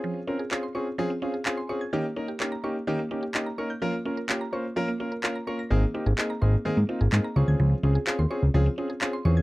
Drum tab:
CP |--x---x-|--x---x-|--x---x-|--x---x-|

CP |--x---x-|